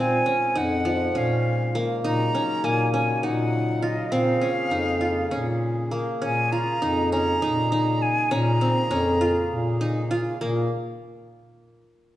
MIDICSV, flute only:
0, 0, Header, 1, 2, 480
1, 0, Start_track
1, 0, Key_signature, -5, "minor"
1, 0, Tempo, 595829
1, 1647, Time_signature, 7, 3, 24, 8
1, 9799, End_track
2, 0, Start_track
2, 0, Title_t, "Flute"
2, 0, Program_c, 0, 73
2, 0, Note_on_c, 0, 80, 92
2, 465, Note_on_c, 0, 78, 92
2, 477, Note_off_c, 0, 80, 0
2, 948, Note_on_c, 0, 77, 77
2, 960, Note_off_c, 0, 78, 0
2, 1476, Note_off_c, 0, 77, 0
2, 1660, Note_on_c, 0, 82, 90
2, 2132, Note_on_c, 0, 80, 87
2, 2144, Note_off_c, 0, 82, 0
2, 2363, Note_off_c, 0, 80, 0
2, 2368, Note_on_c, 0, 80, 76
2, 2609, Note_on_c, 0, 78, 73
2, 2621, Note_off_c, 0, 80, 0
2, 3086, Note_on_c, 0, 75, 70
2, 3099, Note_off_c, 0, 78, 0
2, 3318, Note_on_c, 0, 77, 87
2, 3330, Note_off_c, 0, 75, 0
2, 4529, Note_off_c, 0, 77, 0
2, 5018, Note_on_c, 0, 80, 84
2, 5253, Note_on_c, 0, 82, 92
2, 5265, Note_off_c, 0, 80, 0
2, 5735, Note_off_c, 0, 82, 0
2, 5739, Note_on_c, 0, 82, 98
2, 6461, Note_on_c, 0, 80, 85
2, 6473, Note_off_c, 0, 82, 0
2, 6702, Note_on_c, 0, 82, 97
2, 6714, Note_off_c, 0, 80, 0
2, 7903, Note_off_c, 0, 82, 0
2, 9799, End_track
0, 0, End_of_file